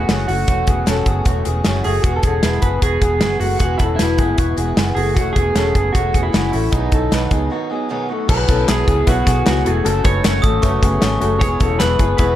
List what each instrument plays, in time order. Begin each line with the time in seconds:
Already playing: clean electric guitar F#4
0.09 fingered electric bass F#1, steel-string acoustic guitar E3 A3 C#4 F#4, clean electric guitar C#4 G#4, snare, closed hi-hat
0.28 fingered electric bass F#1, clean electric guitar A3 F#4, steel-string acoustic guitar A3 C#4 F#4, open hi-hat
0.47 fingered electric bass E1, steel-string acoustic guitar E3 A3 C#4 F#4, clean electric guitar A3 F#4, kick, closed hi-hat
0.66 fingered electric bass E1, steel-string acoustic guitar A3 C#4 F#4, clean electric guitar B3 G#4, kick, closed hi-hat
0.86 fingered electric bass E1, steel-string acoustic guitar E3 A3 C#4 F#4, clean electric guitar C#4 A4, snare, closed hi-hat
1.06 fingered electric bass F#1, steel-string acoustic guitar A3 C#4 F#4, clean electric guitar B3 G#4, kick, closed hi-hat
1.25 fingered electric bass E1, steel-string acoustic guitar E3 A3 C#4 F#4, clean electric guitar A3 F#4, kick, closed hi-hat
1.45 fingered electric bass E1, steel-string acoustic guitar A3 C#4 F#4, clean electric guitar B3 G#4, closed hi-hat
1.64 fingered electric bass F#1, steel-string acoustic guitar E3 A3 C#4 F#4, clean electric guitar C#4 G#4, snare, closed hi-hat
1.84 fingered electric bass F#1, clean electric guitar A3 F#4 G#4, steel-string acoustic guitar A3 C#4 F#4, open hi-hat
2.02 fingered electric bass E1, steel-string acoustic guitar E3 G#3 B3 F#4, clean electric guitar B3 F#4 G#4, kick, closed hi-hat
2.16 clean electric guitar A4
2.23 fingered electric bass E1, steel-string acoustic guitar G#3 B3 F#4, clean electric guitar C#4 G#4 A4, kick, closed hi-hat
2.43 fingered electric bass E1, steel-string acoustic guitar E3 G#3 B3 F#4, clean electric guitar E4 B4, snare, closed hi-hat
2.62 fingered electric bass F#1, clean electric guitar B3 G#4 B4, steel-string acoustic guitar B3 F#4, kick, closed hi-hat
2.66 steel-string acoustic guitar G#3
2.82 fingered electric bass E1, steel-string acoustic guitar E3 G#3 B3 F#4, clean electric guitar B3 F#4 G#4, kick, closed hi-hat
3.01 fingered electric bass E1, steel-string acoustic guitar G#3 B3 F#4, clean electric guitar B3 G#4, kick, closed hi-hat
3.21 fingered electric bass F#1, steel-string acoustic guitar E3 G#3 B3 F#4, clean electric guitar B3 G#4, snare, closed hi-hat
3.40 fingered electric bass F#1, steel-string acoustic guitar G#3 B3 F#4, clean electric guitar A3 F#4, open hi-hat
3.59 fingered electric bass E1, steel-string acoustic guitar E3 G#3 B3 F#4, clean electric guitar B3 F#4 G#4, kick, closed hi-hat
3.78 fingered electric bass E1, steel-string acoustic guitar B3 F#4, clean electric guitar C#4 E4 A4, kick, closed hi-hat
3.83 steel-string acoustic guitar G#3
3.96 steel-string acoustic guitar E3 G#3, clean electric guitar E4 B4, snare, closed hi-hat
4.00 fingered electric bass E1, steel-string acoustic guitar B3 F#4, clean electric guitar E4
4.18 fingered electric bass F#1, steel-string acoustic guitar G#3 B3 F#4, clean electric guitar B3 G#4, kick, closed hi-hat
4.37 fingered electric bass E1, steel-string acoustic guitar E3 G#3 B3 F#4, clean electric guitar B3 F#4, kick, closed hi-hat
4.57 fingered electric bass E1, steel-string acoustic guitar G#3 B3 F#4, clean electric guitar B3 G#4, closed hi-hat
4.77 fingered electric bass F#1, steel-string acoustic guitar E3 G#3 B3 F#4, clean electric guitar B3 G#4, snare, closed hi-hat
4.95 fingered electric bass F#1, clean electric guitar A3 F#4 G#4, steel-string acoustic guitar F#4, open hi-hat
4.99 steel-string acoustic guitar G#3 B3
5.14 fingered electric bass E1, steel-string acoustic guitar E3 A3 C#4 F#4, clean electric guitar A3 F#4, kick, closed hi-hat
5.33 fingered electric bass E1, steel-string acoustic guitar C#4 F#4, clean electric guitar G#4, kick, closed hi-hat
5.37 steel-string acoustic guitar A3, clean electric guitar B3
5.55 fingered electric bass E1, steel-string acoustic guitar E3 A3 C#4 F#4, clean electric guitar C#4 A4, snare, closed hi-hat
5.75 fingered electric bass F#1, steel-string acoustic guitar A3 C#4 F#4, clean electric guitar B3 G#4, kick, closed hi-hat
5.93 fingered electric bass E1, steel-string acoustic guitar E3 A3 C#4 F#4, clean electric guitar A3 F#4, kick, closed hi-hat
6.13 fingered electric bass E1, steel-string acoustic guitar A3 C#4 F#4, clean electric guitar B3 G#4, kick, closed hi-hat
6.23 clean electric guitar E4
6.32 fingered electric bass F#1, steel-string acoustic guitar E3 A3 C#4 F#4, clean electric guitar C#4 G#4, snare, closed hi-hat
6.52 fingered electric bass A1, clean electric guitar A3 E4 F#4, steel-string acoustic guitar A3 C#4 F#4, open hi-hat
6.71 fingered electric bass B1, steel-string acoustic guitar B2 D#3 F#3 B3 D#4, clean electric guitar B3 D#4 G#4, kick, closed hi-hat
6.92 fingered electric bass B1, steel-string acoustic guitar F#3 B3 D#4, clean electric guitar C#4 A4, kick, closed hi-hat
7.11 fingered electric bass B1, steel-string acoustic guitar B2 D#3 F#3 B3 D#4, clean electric guitar D#4 B4, snare, closed hi-hat
7.31 fingered electric bass C#2, steel-string acoustic guitar F#3 B3 D#4, clean electric guitar B3 G#4, kick, closed hi-hat
7.50 steel-string acoustic guitar D#3 F#3 B3 D#4, clean electric guitar B3 F#4
7.70 steel-string acoustic guitar F#3 B3 D#4, clean electric guitar B3 G#4
7.89 steel-string acoustic guitar B2 D#3 F#3 B3 D#4, clean electric guitar B3 G#4
8.09 steel-string acoustic guitar F#3 B3 D#4, clean electric guitar A3 F#4
8.28 fingered electric bass B1, steel-string acoustic guitar B2 F#3 B3 E4, reed electric piano B3 E4 F#4 B4, clean electric guitar B3 G#4 B4, kick, crash
8.47 fingered electric bass B1, steel-string acoustic guitar F#3 B3 E4, reed electric piano B3 E4 F#4 A4, clean electric guitar C#4 A4, kick, closed hi-hat
8.67 fingered electric bass B1, steel-string acoustic guitar B2 F#3 B3 E4, reed electric piano B3 E4 F#4 B4, clean electric guitar E4 G#4 B4, snare, clap, closed hi-hat
8.86 fingered electric bass C#2, steel-string acoustic guitar F#3 B3 E4, reed electric piano B3 E4 F#4 C#5, clean electric guitar B3 G#4, kick, closed hi-hat
9.07 fingered electric bass B1, steel-string acoustic guitar B2 F#3 B3 E4, reed electric piano B3 E4 F#4 B4, clean electric guitar B3 F#4, kick, closed hi-hat
9.25 fingered electric bass B1, reed electric piano B3 E4 F#4 A4, clean electric guitar B3 G#4, steel-string acoustic guitar B3 E4, kick, snare, closed hi-hat
9.30 steel-string acoustic guitar F#3
9.45 fingered electric bass C#2, steel-string acoustic guitar B2 F#3 B3 E4, reed electric piano B3 E4 F#4 B4, clean electric guitar B3 F#4 G#4, snare, clap, closed hi-hat
9.64 fingered electric bass E1, steel-string acoustic guitar F#3 B3 E4, clean electric guitar A3 F#4 G#4, reed electric piano B3 E4 F#4 A4, closed hi-hat
9.84 fingered electric bass F#1, steel-string acoustic guitar F#2 C#3 F#3 A3 C#4, reed electric piano A3 C#4 F#4 A4, clean electric guitar C#4 A4, closed hi-hat
10.04 fingered electric bass F#1, steel-string acoustic guitar F#3 A3 C#4, reed electric piano A3 C#4 F#4 A4, clean electric guitar D#4 B4 C#5, kick, closed hi-hat
10.23 fingered electric bass F#1, steel-string acoustic guitar C#3 F#3 A3 C#4, reed electric piano A3 C#4 F#4 A4, clean electric guitar F#4 C#5, snare, clap, closed hi-hat
10.42 fingered electric bass G#1, steel-string acoustic guitar F#3 A3 C#4, reed electric piano A3 C#4 F#4 A4, clean electric guitar C#4 A4, glockenspiel D#6, kick, closed hi-hat
10.62 fingered electric bass F#1, steel-string acoustic guitar F#2 C#3 F#3 A3 C#4, reed electric piano A3 C#4 F#4 B4, clean electric guitar A3 F#4, glockenspiel C#6, kick, closed hi-hat
10.82 fingered electric bass F#1, steel-string acoustic guitar F#3 A3 C#4, reed electric piano A3 C#4 F#4 A4, clean electric guitar B3 G#4, kick, closed hi-hat
11.01 fingered electric bass G#1, steel-string acoustic guitar C#3 F#3 A3 C#4, reed electric piano A3 C#4 F#4 A4, clean electric guitar C#4 G#4, glockenspiel C#6, snare, clap, closed hi-hat
11.20 fingered electric bass F#1, steel-string acoustic guitar F#3 A3 C#4, reed electric piano A3 C#4 F#4 G#4, clean electric guitar A3 F#4, closed hi-hat
11.40 fingered electric bass E1, steel-string acoustic guitar E3 G#3 B3 E4, reed electric piano G#3 B3 E4 G#4, clean electric guitar B3 G#4 C#5, kick, closed hi-hat
11.60 fingered electric bass E1, reed electric piano G#3 B3 E4 F#4, steel-string acoustic guitar G#3 B3 E4, clean electric guitar C#4 A4, kick, closed hi-hat
11.79 fingered electric bass E1, steel-string acoustic guitar E3 G#3 B3 E4, reed electric piano G#3 B3 E4 G#4, clean electric guitar E4 B4, snare, clap, closed hi-hat
11.99 fingered electric bass F#1, reed electric piano G#3 B3 E4 G#4, steel-string acoustic guitar G#3 B3 E4, clean electric guitar B3 G#4, kick, closed hi-hat
12.18 fingered electric bass E1, steel-string acoustic guitar E3 G#3 B3 E4, reed electric piano G#3 B3 E4 G#4, clean electric guitar B3 F#4 B4, kick, closed hi-hat